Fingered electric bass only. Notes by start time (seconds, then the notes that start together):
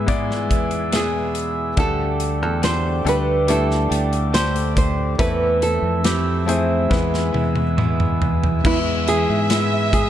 Already playing: G#2
0.51 E2
1.77 D2
2.42 E2
3.05 D2
3.91 D2
5.19 E2
5.82 F2
6.91 E2
7.34 E2
8.65 E2
9.30 G#2